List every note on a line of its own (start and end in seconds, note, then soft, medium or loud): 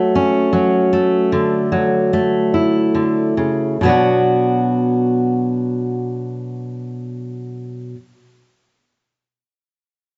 0.00 0.52 F#3 medium
0.00 0.92 A3 medium
0.15 1.32 C#4 soft
0.53 1.71 F#3 soft
0.93 2.12 A3 soft
1.32 2.93 D3 medium
1.72 3.75 F#3 soft
2.13 3.81 A3 soft
2.54 3.76 E4 soft
2.95 3.37 D3 soft
3.37 3.80 C#3 soft
3.81 7.94 B2 soft
3.81 7.95 F#3 soft
3.85 7.96 B3 soft
3.85 7.97 D4 soft
3.85 7.98 F#4 soft